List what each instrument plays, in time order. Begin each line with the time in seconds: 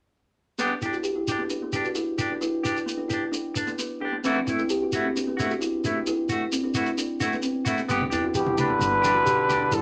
0.58 kalimba B3, clean electric guitar B3 D4 G4, shekere
0.70 kalimba D4
0.82 kalimba E4, clean electric guitar G4, shekere
0.86 clean electric guitar D4
0.93 kalimba F#4, shekere
1.03 kalimba G4, shekere
1.16 kalimba E4
1.28 kalimba D4, clean electric guitar D4 G4, shekere
1.39 kalimba B3
1.49 kalimba D4, shekere
1.62 kalimba B3
1.73 kalimba D4, clean electric guitar D4 G4, shekere
1.85 kalimba F#4, shekere
1.95 kalimba E4, shekere
2.18 kalimba D4, clean electric guitar D4 G4, shekere
2.30 kalimba D4
2.41 kalimba E4, shekere
2.63 kalimba D4, clean electric guitar D4 G4, shekere
2.77 shekere
2.86 kalimba B3, shekere
2.97 kalimba D4
3.08 kalimba E4, clean electric guitar G4, shekere
3.13 clean electric guitar D4
3.32 kalimba D4, shekere
3.54 kalimba D4, clean electric guitar D4, muted clean electric guitar stroke, shekere
3.67 kalimba B3, shekere
3.79 kalimba B3, shekere
4.00 kalimba D4, clean electric guitar G4
4.05 clean electric guitar D4
4.12 kalimba B3
4.24 clean electric guitar E3 A3 E4 F#4, kalimba C4, shekere
4.36 kalimba D4
4.47 clean electric guitar A3 E4, kalimba E4, muted clean electric guitar stroke, shekere
4.59 kalimba E4, shekere
4.70 kalimba G4, shekere
4.82 kalimba F#4
4.92 clean electric guitar A3 E4 F#4, shekere
5.05 kalimba C4
5.16 kalimba D4, shekere
5.27 kalimba B3
5.37 clean electric guitar A3 E4 F#4, kalimba D4, shekere
5.50 kalimba F#4, shekere
5.61 kalimba E4, shekere
5.84 clean electric guitar A3 E4, kalimba D4, shekere
5.95 kalimba D4
6.07 kalimba E4, shekere
6.29 clean electric guitar A3 F#4, shekere
6.52 kalimba C4, shekere
6.63 kalimba D4
6.74 clean electric guitar A3 E4 F#4, kalimba E4, shekere
6.86 shekere
6.98 kalimba D4, shekere
7.20 clean electric guitar A3 E4 F#4, kalimba D4, shekere
7.33 kalimba B3, shekere
7.42 kalimba C4, shekere
7.65 clean electric guitar A3 E4 F#4, kalimba D4, shekere
7.78 kalimba B3, shekere
7.88 upright bass G1, clean electric guitar B3 G4, kalimba B3, muted clean electric guitar stroke, shekere
8.01 kalimba D4, low conga
8.10 upright bass E2, clean electric guitar D4 G4, kalimba E4, shekere
8.24 kalimba F#4
8.34 trombone B2, kalimba G4, trumpet G4, high conga, shekere
8.46 upright bass E1, kalimba E4, high conga
8.58 trombone D3, kalimba D4, clean electric guitar D4 G4, trumpet B4, low conga, shekere
8.69 upright bass G1, kalimba B3
8.79 upright bass G1, kalimba D4, shekere
8.92 kalimba B3
9.02 kalimba D4, clean electric guitar D4 G4, high conga, shekere
9.14 kalimba F#4
9.25 upright bass B1, kalimba G4, shekere
9.48 kalimba D4, clean electric guitar G4, low conga, shekere
9.52 clean electric guitar D4
9.60 kalimba D4
9.72 upright bass G1, trombone D3, kalimba E4, trumpet A4, shekere